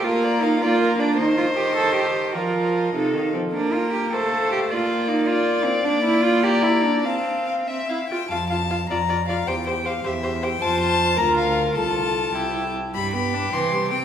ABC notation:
X:1
M:6/8
L:1/16
Q:3/8=103
K:Bb
V:1 name="Violin"
f2 b2 f2 b2 f2 b2 | e12 | d3 e3 f4 z2 | g6 f6 |
f6 f6 | [K:F] g6 b6 | a4 f2 e2 f2 g2 | a2 a4 b4 f2 |
g2 g2 f2 e4 g2 | a2 a4 b2 f4 | a8- a2 z2 | =b2 b4 c'4 g2 |]
V:2 name="Violin"
B2 d2 B2 d2 B2 d2 | c12 | B6 A4 z2 | B6 c6 |
d6 d6- | [K:F] d6 d6 | f6 e4 z2 | f2 f2 f2 d2 d2 d2 |
c2 c2 c2 c2 c2 c2 | c6 B6 | A6 G4 z2 | G12 |]
V:3 name="Cello"
F4 E2 F4 D2 | E2 F2 G2 A2 G4 | F6 E4 C2 | D2 F2 G2 A4 G2 |
F4 E2 F4 C2 | [K:F] D2 E2 F2 G2 E2 D2 | C6 z6 | F,,6 F,,6 |
E,,6 E,,6 | F,,6 D,,6 | C,,6 C,,4 z2 | G,,6 C,6 |]
V:4 name="Viola"
B,6 B,6 | E,12 | F,6 C,2 E,2 F,2 | B,6 A,6 |
B,12 | [K:F] B,12 | C6 C2 E2 F2 | F2 F2 F2 F2 F2 F2 |
G2 G2 G2 G2 G2 G2 | F6 F6 | F6 E4 z2 | G,2 =B,2 D2 E,2 G,2 C2 |]